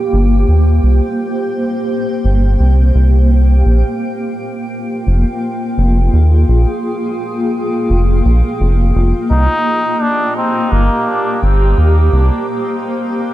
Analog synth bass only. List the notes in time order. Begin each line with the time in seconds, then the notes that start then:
0.13 G1
0.48 D#2
0.83 C2
2.24 G1
2.60 C2
2.95 C2
3.66 A#1
5.07 F1
5.78 F1
6.13 D#2
6.48 A#1
7.90 F1
8.25 A#1
8.60 F1
8.95 F1
9.30 C2
10.72 G1
11.43 G1
11.78 D#2
12.13 C2